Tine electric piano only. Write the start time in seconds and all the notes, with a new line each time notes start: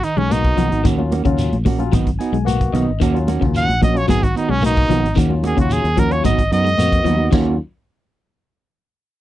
0.29 A#3 B3 F#4
0.97 F#3 C#4 F4
1.25 F#3 C#4 F4
1.78 F#3 C#4 F4
2.19 G#5
2.45 A#3 B3 F#4 F#5
2.73 D#5
3.14 F#3 C#4 F4
3.41 F#3 C#4 F4
3.94 F#3 C#4 F4
4.62 A#3 B3 F#4
5.29 F#3 C#4 F4
5.56 F#3 C#4 F4
6.10 F#3 C#4 F4
6.77 A#3 B3 F#4
7.32 F#3 C#4 F4